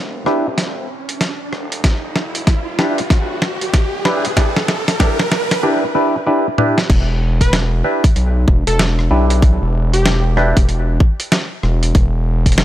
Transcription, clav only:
0.00 0.24 D4 medium
0.00 0.23 E4 medium
0.00 0.24 G4 medium
0.00 0.24 B4 medium
0.26 0.47 D4 medium
0.26 0.47 E4 medium
0.26 0.47 G4 medium
0.26 0.47 B4 medium
2.79 3.00 D4 medium
2.79 3.00 E4 medium
2.79 3.00 G4 medium
2.79 3.00 B4 medium
4.05 4.26 D4 medium
4.05 4.26 E4 medium
4.05 4.26 G4 medium
4.05 4.26 B4 medium
4.37 4.57 D4 medium
4.37 4.57 E4 medium
4.37 4.57 G4 medium
4.37 4.57 B4 medium
5.00 5.21 D4 medium
5.00 5.21 E4 medium
5.00 5.21 G4 medium
5.00 5.21 B4 medium
5.63 5.84 D4 medium
5.63 5.84 E4 medium
5.63 5.84 G4 medium
5.63 5.84 B4 medium
5.95 6.15 D4 medium
5.95 6.15 E4 medium
5.95 6.15 G4 medium
5.95 6.15 B4 medium
6.27 6.47 D4 medium
6.27 6.47 E4 medium
6.27 6.47 G4 medium
6.27 6.47 B4 medium
6.58 6.79 D4 medium
6.58 6.79 E4 medium
6.58 6.79 G4 medium
6.58 6.79 B4 medium
7.84 8.05 D4 medium
7.84 8.05 E4 medium
7.84 8.05 G4 medium
7.84 8.05 B4 medium
9.11 10.34 D4 medium
9.11 10.34 E4 medium
9.11 10.34 G4 medium
9.11 10.34 B4 medium
10.37 10.57 D4 medium
10.37 10.57 E4 medium
10.37 10.57 G4 medium
10.37 10.57 B4 medium

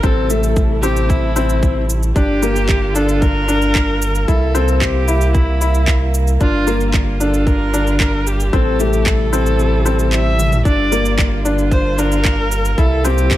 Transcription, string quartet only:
0.00 2.14 C3 medium
0.00 6.37 G3 medium
0.00 2.14 A3 medium
0.00 2.14 E4 medium
2.16 4.26 D3 medium
2.16 8.49 A#3 medium
2.16 4.26 F4 medium
4.28 6.39 C3 medium
4.28 6.39 E4 medium
6.41 8.51 D3 medium
6.41 12.74 G3 medium
6.41 8.51 F4 medium
8.53 10.64 C3 medium
8.53 10.64 A3 medium
8.53 10.63 E4 medium
10.66 12.76 D3 medium
10.66 13.37 A#3 medium
10.66 12.76 F4 medium
12.79 13.37 C3 medium
12.79 13.37 G3 medium
12.79 13.37 E4 medium

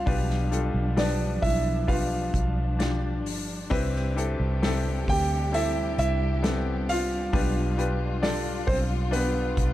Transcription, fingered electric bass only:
0.07 0.71 B1 loud
0.74 1.39 B1 medium
1.42 2.30 B1 medium
2.34 3.25 B1 loud
3.25 3.68 G1 medium
3.71 4.36 C2 loud
4.40 5.04 C2 medium
5.08 5.95 D2 medium
5.98 7.29 C2 loud
7.33 8.64 B1 medium
8.68 9.53 B1 medium
9.57 9.73 B1 medium

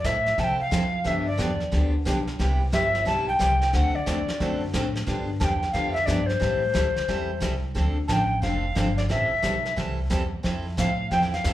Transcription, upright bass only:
0.04 0.37 A2 medium
0.38 0.70 C3 medium
0.72 1.04 F2 medium
1.05 1.38 G2 medium
1.39 1.71 E2 medium
1.73 2.05 D2 medium
2.06 2.38 B1 medium
2.39 2.72 C2 medium
2.73 3.05 G1 medium
3.07 3.39 B1 medium
3.40 3.72 C2 medium
3.74 3.93 D2 medium
3.95 muted upright bass stroke soft
4.07 4.39 E2 medium
4.41 4.73 F#2 medium
4.74 5.06 A2 medium
5.08 5.40 G2 medium
5.41 5.73 E2 medium
5.74 6.07 F2 medium
6.08 6.40 G2 medium
6.41 6.74 A2 medium
6.75 6.95 D2 medium
6.96 muted upright bass stroke soft
7.09 7.41 E2 medium
7.42 7.74 C2 medium
7.76 8.08 D2 medium
8.09 8.41 A1 medium
8.43 8.75 F1 medium
8.76 9.09 G1 medium
9.10 9.30 A1 medium
9.32 muted upright bass stroke soft
9.44 9.76 B1 medium
9.77 10.09 C2 medium
10.11 10.43 E2 medium
10.44 10.77 F2 medium
10.78 11.10 A2 medium
11.12 11.44 E2 medium
11.45 11.53 F2 medium

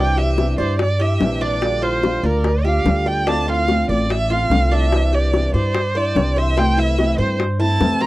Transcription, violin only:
0.00 0.19 G5 medium
0.17 0.59 E5 medium
0.59 0.78 C5 medium
0.80 1.02 D5 medium
1.01 1.43 E5 medium
1.41 1.85 D5 medium
1.83 2.27 C5 medium
2.25 2.67 A#4 medium
2.66 3.09 F5 medium
3.07 3.29 G5 medium
3.28 3.51 A5 loud
3.49 3.90 F5 medium
3.90 4.13 D5 medium
4.11 4.33 E5 medium
4.32 4.75 F5 loud
4.73 5.16 E5 loud
5.14 5.55 D5 medium
5.55 5.98 C5 medium
5.97 6.40 D5 medium
6.38 6.60 E5 medium
6.58 6.80 G5 loud
6.79 7.19 E5 medium
7.20 7.38 C5 medium
7.61 8.03 A5 loud
8.01 8.06 A#5 loud

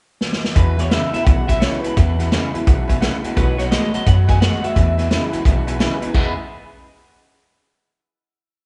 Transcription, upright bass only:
0.56 0.96 E2 medium
1.14 muted upright bass stroke medium
1.27 1.67 B1 medium
1.85 muted upright bass stroke medium
1.97 2.37 E2 medium
2.55 muted upright bass stroke medium
2.67 3.07 B1 medium
3.24 muted upright bass stroke medium
3.37 3.77 B1 loud
3.95 muted upright bass stroke medium
4.07 4.46 F#2 medium
4.64 muted upright bass stroke medium
4.76 5.16 E2 medium
5.34 muted upright bass stroke medium
5.45 5.85 B1 medium
6.04 muted upright bass stroke medium
6.15 6.35 E2 loud

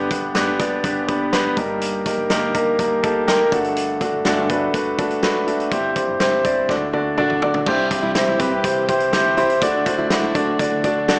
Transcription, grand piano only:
0.00 0.56 G2 medium
0.00 0.56 D3 medium
0.00 0.11 B3 medium
0.00 0.11 D4 medium
0.00 0.11 G4 medium
0.00 0.12 B4 medium
0.11 0.28 B3 medium
0.11 0.28 D4 medium
0.11 0.28 G4 medium
0.11 0.28 B4 medium
0.35 0.52 B3 medium
0.35 0.52 D4 medium
0.35 0.53 G4 medium
0.35 0.53 B4 medium
0.59 0.77 B3 medium
0.59 0.77 D4 medium
0.59 0.77 G4 medium
0.59 0.77 D5 medium
0.84 1.01 B3 medium
0.84 1.02 D4 medium
0.84 1.02 G4 medium
0.84 1.02 B4 medium
1.08 1.25 B3 medium
1.08 1.25 D4 medium
1.08 1.26 G4 medium
1.08 1.26 B4 medium
1.33 1.50 B3 medium
1.33 1.50 D4 medium
1.33 1.50 G4 medium
1.33 1.50 B4 loud
1.57 2.26 G2 medium
1.57 2.26 G3 medium
1.57 1.96 A#3 medium
1.57 1.96 D#4 medium
1.57 1.96 G4 medium
1.57 1.96 A#4 medium
2.06 2.23 A#3 medium
2.06 2.23 D#4 medium
2.06 2.23 G4 medium
2.06 2.23 A#4 medium
2.30 2.47 A#3 medium
2.30 2.47 D#4 medium
2.30 2.48 G4 medium
2.30 2.48 A#4 medium
2.54 2.72 A#3 medium
2.54 2.72 D#4 medium
2.54 2.72 G4 medium
2.54 2.72 A#4 medium
2.79 2.96 A#3 medium
2.79 2.96 D#4 medium
2.79 2.96 G4 medium
2.79 2.96 A#4 medium
3.03 3.20 A#3 medium
3.03 3.20 D#4 medium
3.03 3.21 G4 medium
3.03 3.21 A4 medium
3.03 3.26 A5 medium
3.27 3.45 A#3 medium
3.27 3.45 D#4 medium
3.27 3.45 G4 medium
3.27 3.45 A#4 loud
3.27 3.50 G5 medium
3.52 4.21 G2 medium
3.52 3.91 A3 medium
3.52 3.91 D4 medium
3.52 3.91 F#4 medium
3.52 3.91 A4 medium
3.52 3.75 F#5 medium
4.01 4.18 A3 medium
4.01 4.18 D4 medium
4.01 4.18 F#4 medium
4.01 4.18 A4 medium
4.25 4.43 A3 medium
4.25 4.43 D4 medium
4.25 4.43 F#4 medium
4.25 4.43 A4 loud
4.50 4.67 A3 medium
4.50 4.67 D4 medium
4.50 4.67 F#4 medium
4.50 4.67 B4 medium
4.74 4.91 A3 medium
4.74 4.91 D4 medium
4.74 4.92 F#4 medium
4.74 4.92 B4 medium
4.98 5.16 A3 medium
4.98 5.16 D4 medium
4.98 5.16 F#4 medium
4.98 5.16 A4 medium
5.23 5.40 A3 medium
5.23 5.40 D4 medium
5.23 5.40 F#4 medium
5.23 5.40 B4 loud
5.47 5.64 A3 medium
5.47 5.64 D4 medium
5.47 5.65 F#4 medium
5.47 5.65 A4 medium
5.71 6.41 G2 medium
5.71 6.41 G3 medium
5.71 5.89 C4 medium
5.71 5.89 E4 medium
5.71 5.89 G4 medium
5.71 5.89 C5 loud
5.96 6.13 C4 medium
5.96 6.13 E4 medium
5.96 6.13 G4 medium
5.96 6.14 C5 medium
6.20 6.37 C4 medium
6.20 6.38 E4 medium
6.20 6.38 G4 medium
6.20 6.38 C5 loud
6.44 6.62 C4 medium
6.44 6.62 E4 medium
6.44 6.62 G4 medium
6.44 6.62 D5 medium
6.69 7.38 A2 medium
6.69 6.86 D4 medium
6.69 6.87 F#4 medium
6.69 6.87 A4 medium
6.69 6.87 D5 medium
6.93 7.11 D4 medium
6.93 7.11 F#4 medium
6.93 7.11 A4 medium
6.93 7.11 D5 medium
7.18 7.35 D4 loud
7.18 7.35 F#4 medium
7.18 7.35 A4 medium
7.18 7.35 D5 loud
7.42 7.60 D4 medium
7.42 7.60 F#4 medium
7.42 7.60 A4 medium
7.42 7.60 D5 medium
7.67 8.36 G2 medium
7.67 7.84 C4 medium
7.67 7.84 E4 medium
7.67 7.84 G4 medium
7.67 7.84 C5 loud
7.91 8.09 C4 medium
7.91 8.09 E4 medium
7.91 8.09 G4 medium
7.91 8.09 C5 medium
8.15 8.33 C4 medium
8.15 8.33 E4 medium
8.15 8.33 G4 medium
8.15 8.33 C5 medium
8.40 8.57 C4 medium
8.40 8.57 E4 medium
8.40 8.57 G4 medium
8.40 8.57 B4 medium
8.63 8.81 C4 medium
8.63 8.81 E4 medium
8.63 8.81 G4 medium
8.63 8.81 C5 medium
8.88 9.06 C4 medium
8.88 9.06 E4 medium
8.88 9.06 G4 medium
8.88 9.06 C5 medium
9.12 9.30 C4 medium
9.12 9.30 E4 medium
9.12 9.30 G4 medium
9.12 9.30 C5 loud
9.37 9.55 C4 loud
9.37 9.55 E4 medium
9.37 9.55 G4 medium
9.37 9.55 C5 loud
9.62 10.31 A2 medium
9.62 9.79 D4 loud
9.62 9.79 F#4 medium
9.62 9.79 A4 medium
9.62 9.79 D5 loud
9.86 10.03 D4 medium
9.86 10.04 F#4 medium
9.86 10.04 A4 medium
9.86 10.04 C5 medium
10.10 10.28 D4 medium
10.10 10.28 F#4 medium
10.10 10.28 A4 medium
10.10 10.28 D5 medium
10.35 10.52 D4 medium
10.35 10.52 F#4 medium
10.35 10.52 A4 medium
10.35 10.52 D5 medium
10.59 10.77 D4 medium
10.59 10.77 F#4 medium
10.59 10.77 A4 medium
10.59 10.77 D5 medium
10.84 11.01 D4 medium
10.84 11.01 F#4 medium
10.84 11.01 A4 medium
10.84 11.01 D5 medium
11.09 11.19 D4 medium
11.09 11.19 F#4 medium
11.09 11.19 A4 loud
11.09 11.19 D5 loud
11.09 11.19 F#5 medium

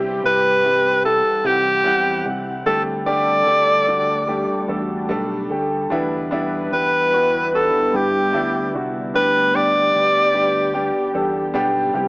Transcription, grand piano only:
0.00 0.20 G2 medium
0.00 0.23 G3 loud
0.00 0.24 C4 loud
0.00 0.24 E4 loud
0.00 0.25 G4 loud
0.23 0.62 G3 medium
0.23 0.62 C4 medium
0.23 0.62 E4 medium
0.23 0.63 G4 medium
0.64 1.02 G3 medium
0.64 1.02 C4 medium
0.64 1.03 E4 medium
0.64 1.03 G4 medium
1.04 1.42 G3 medium
1.04 1.42 C4 medium
1.04 1.43 E4 medium
1.04 1.43 A4 medium
1.44 1.82 G3 medium
1.44 1.83 C4 medium
1.44 1.83 E4 medium
1.44 1.83 F#5 medium
1.84 2.23 G3 loud
1.84 2.23 C4 medium
1.84 2.23 E4 loud
1.84 2.23 F#5 loud
2.25 2.63 G3 medium
2.25 2.64 C4 medium
2.25 2.64 E4 medium
2.25 2.64 G4 medium
2.66 3.84 A2 medium
2.66 3.04 G3 loud
2.66 3.04 A3 medium
2.66 3.04 D4 medium
2.66 3.05 G4 loud
3.06 3.44 G3 loud
3.06 3.45 A3 medium
3.06 3.45 D4 medium
3.06 3.45 G4 loud
3.47 3.85 G3 medium
3.47 3.85 A3 medium
3.47 3.85 D4 medium
3.47 3.86 G4 medium
3.87 4.26 G3 medium
3.87 4.26 A3 medium
3.87 4.26 D4 medium
3.87 4.26 F#4 medium
4.28 4.66 G3 medium
4.28 4.67 A3 medium
4.28 4.67 D4 medium
4.28 4.67 G4 medium
4.68 5.07 G3 medium
4.68 5.07 A3 medium
4.68 5.08 D4 medium
4.68 5.08 A4 loud
5.09 5.48 G3 loud
5.09 5.48 A3 medium
5.09 5.48 D4 medium
5.09 5.49 A4 loud
5.50 5.89 G3 medium
5.50 5.89 A3 medium
5.50 5.89 D4 medium
5.50 5.90 G4 medium
5.90 7.09 B2 medium
5.90 6.29 G3 loud
5.90 6.30 B3 loud
5.90 6.30 D4 loud
5.90 6.30 E4 loud
6.31 6.70 G3 loud
6.31 6.70 B3 loud
6.31 6.70 D4 loud
6.31 6.70 E4 loud
6.72 7.10 G3 medium
6.72 7.11 B3 medium
6.72 7.11 D4 medium
6.72 7.11 G4 medium
7.12 7.51 G3 medium
7.12 7.51 B3 medium
7.12 7.51 D4 medium
7.12 7.51 F#4 medium
7.53 7.91 G3 medium
7.53 7.92 B3 medium
7.53 7.92 D4 medium
7.53 7.92 F#4 medium
7.93 8.32 G3 medium
7.93 8.32 B3 medium
7.93 8.32 D4 medium
7.93 8.32 G4 medium
8.33 8.72 G3 loud
8.33 8.72 B3 medium
8.33 8.72 D4 medium
8.33 8.73 E4 loud
8.74 9.12 G3 medium
8.74 9.13 B3 medium
8.74 9.13 D4 medium
8.74 9.13 F#4 medium
9.14 10.31 D3 medium
9.14 9.52 G3 medium
9.14 9.53 B3 medium
9.14 9.53 D4 medium
9.14 9.53 G4 loud
9.54 9.92 G3 medium
9.54 9.93 B3 medium
9.54 9.93 D4 medium
9.54 9.93 G4 loud
9.94 10.32 G3 medium
9.94 10.32 B3 medium
9.94 10.33 D4 medium
9.94 10.33 G4 medium
10.33 10.72 G3 medium
10.33 10.72 B3 medium
10.33 10.72 D4 medium
10.33 10.73 G4 medium
10.73 11.12 G3 medium
10.73 11.12 B3 medium
10.73 11.13 D4 medium
10.73 11.13 G4 loud
11.14 11.52 G3 medium
11.14 11.52 B3 medium
11.14 11.53 D4 medium
11.14 11.53 A4 loud
11.54 11.92 G3 loud
11.54 11.92 B3 loud
11.54 11.93 D4 loud
11.54 11.93 G4 loud
11.94 12.08 G2 medium
11.94 12.08 G3 medium
11.94 12.08 C4 medium
11.94 12.08 E4 medium
11.94 12.08 G4 loud

